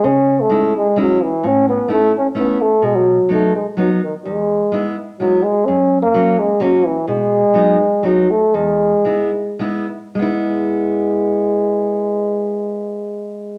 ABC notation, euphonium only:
X:1
M:3/4
L:1/16
Q:1/4=126
K:E
V:1 name="Euphonium" clef=bass
C3 A,3 G,2 F,2 E,2 | C2 B,2 A,2 C2 B,2 A,2 | G, F,3 A,2 G,2 F,2 D,2 | G,6 z2 F,2 G,2 |
C3 ^A,3 G,2 F,2 E,2 | G,8 F,2 A,2 | G,8 z4 | G,12- |
G,12 |]